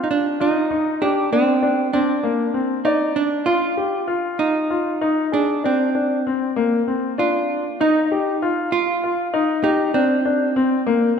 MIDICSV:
0, 0, Header, 1, 3, 480
1, 0, Start_track
1, 0, Tempo, 615385
1, 1032, Time_signature, 7, 3, 24, 8
1, 8732, End_track
2, 0, Start_track
2, 0, Title_t, "Grand piano"
2, 0, Program_c, 0, 0
2, 0, Note_on_c, 0, 65, 70
2, 179, Note_off_c, 0, 65, 0
2, 313, Note_on_c, 0, 65, 66
2, 485, Note_off_c, 0, 65, 0
2, 552, Note_on_c, 0, 63, 69
2, 724, Note_off_c, 0, 63, 0
2, 792, Note_on_c, 0, 67, 73
2, 964, Note_off_c, 0, 67, 0
2, 1034, Note_on_c, 0, 62, 78
2, 1204, Note_off_c, 0, 62, 0
2, 1267, Note_on_c, 0, 62, 70
2, 1440, Note_off_c, 0, 62, 0
2, 1510, Note_on_c, 0, 60, 73
2, 1681, Note_off_c, 0, 60, 0
2, 1743, Note_on_c, 0, 58, 76
2, 1916, Note_off_c, 0, 58, 0
2, 1982, Note_on_c, 0, 60, 65
2, 2156, Note_off_c, 0, 60, 0
2, 2225, Note_on_c, 0, 74, 69
2, 2570, Note_off_c, 0, 74, 0
2, 2702, Note_on_c, 0, 65, 71
2, 2877, Note_off_c, 0, 65, 0
2, 2943, Note_on_c, 0, 67, 64
2, 3119, Note_off_c, 0, 67, 0
2, 3179, Note_on_c, 0, 65, 71
2, 3530, Note_off_c, 0, 65, 0
2, 3669, Note_on_c, 0, 65, 63
2, 3844, Note_off_c, 0, 65, 0
2, 3911, Note_on_c, 0, 63, 73
2, 4087, Note_off_c, 0, 63, 0
2, 4151, Note_on_c, 0, 68, 65
2, 4327, Note_off_c, 0, 68, 0
2, 4401, Note_on_c, 0, 62, 68
2, 4575, Note_off_c, 0, 62, 0
2, 4639, Note_on_c, 0, 62, 63
2, 4814, Note_off_c, 0, 62, 0
2, 4888, Note_on_c, 0, 60, 71
2, 5060, Note_off_c, 0, 60, 0
2, 5120, Note_on_c, 0, 58, 77
2, 5296, Note_off_c, 0, 58, 0
2, 5363, Note_on_c, 0, 60, 65
2, 5538, Note_off_c, 0, 60, 0
2, 5602, Note_on_c, 0, 62, 77
2, 5951, Note_off_c, 0, 62, 0
2, 6088, Note_on_c, 0, 63, 77
2, 6261, Note_off_c, 0, 63, 0
2, 6331, Note_on_c, 0, 67, 66
2, 6503, Note_off_c, 0, 67, 0
2, 6570, Note_on_c, 0, 65, 74
2, 6913, Note_off_c, 0, 65, 0
2, 7048, Note_on_c, 0, 65, 70
2, 7219, Note_off_c, 0, 65, 0
2, 7282, Note_on_c, 0, 63, 77
2, 7455, Note_off_c, 0, 63, 0
2, 7515, Note_on_c, 0, 67, 76
2, 7691, Note_off_c, 0, 67, 0
2, 7754, Note_on_c, 0, 62, 79
2, 7930, Note_off_c, 0, 62, 0
2, 7998, Note_on_c, 0, 62, 73
2, 8172, Note_off_c, 0, 62, 0
2, 8238, Note_on_c, 0, 60, 77
2, 8411, Note_off_c, 0, 60, 0
2, 8475, Note_on_c, 0, 58, 84
2, 8649, Note_off_c, 0, 58, 0
2, 8732, End_track
3, 0, Start_track
3, 0, Title_t, "Hollow-body jazz guitar"
3, 0, Program_c, 1, 26
3, 28, Note_on_c, 1, 63, 63
3, 80, Note_off_c, 1, 63, 0
3, 83, Note_on_c, 1, 62, 88
3, 320, Note_off_c, 1, 62, 0
3, 323, Note_on_c, 1, 63, 86
3, 790, Note_off_c, 1, 63, 0
3, 793, Note_on_c, 1, 62, 86
3, 1031, Note_off_c, 1, 62, 0
3, 1034, Note_on_c, 1, 60, 88
3, 1505, Note_off_c, 1, 60, 0
3, 1509, Note_on_c, 1, 62, 92
3, 2218, Note_off_c, 1, 62, 0
3, 2221, Note_on_c, 1, 63, 82
3, 2462, Note_off_c, 1, 63, 0
3, 2465, Note_on_c, 1, 62, 82
3, 2698, Note_on_c, 1, 65, 93
3, 2713, Note_off_c, 1, 62, 0
3, 3396, Note_off_c, 1, 65, 0
3, 3425, Note_on_c, 1, 63, 95
3, 4124, Note_off_c, 1, 63, 0
3, 4161, Note_on_c, 1, 62, 86
3, 4408, Note_off_c, 1, 62, 0
3, 4411, Note_on_c, 1, 60, 79
3, 5584, Note_off_c, 1, 60, 0
3, 5611, Note_on_c, 1, 65, 81
3, 6091, Note_on_c, 1, 63, 88
3, 6106, Note_off_c, 1, 65, 0
3, 6778, Note_off_c, 1, 63, 0
3, 6803, Note_on_c, 1, 65, 98
3, 7516, Note_on_c, 1, 63, 88
3, 7544, Note_off_c, 1, 65, 0
3, 7743, Note_off_c, 1, 63, 0
3, 7756, Note_on_c, 1, 60, 82
3, 8732, Note_off_c, 1, 60, 0
3, 8732, End_track
0, 0, End_of_file